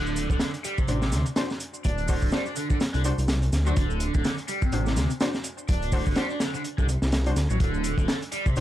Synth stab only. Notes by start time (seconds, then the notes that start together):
0.88 D4 F#4 C5
1.36 D4 F#4 C5
2.08 D4 F#4 C5
2.33 D4 F#4 C5
3.05 D4 F#4 C5
3.66 D4 F#4 C5
4.73 D4 F#4 C5
5.21 D4 F#4 C5
5.93 D4 F#4 C5
6.17 D4 F#4 C5
7.26 D4 F#4 C5
8.56 D4 F#4 C5